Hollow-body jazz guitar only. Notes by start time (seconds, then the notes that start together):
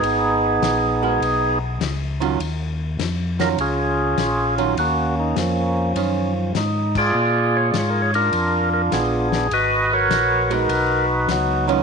1.02 G#3 B3 F#4 A#4
2.20 D#3 F#3 C#4 F4
3.39 D#3 F#3 C#4 F4
4.58 D#3 F#3 C#4 F4
5.96 D#3 C#4 F4
10.50 G#3 B3 F#4 A#4
11.67 D#3 F#3 C#4 F4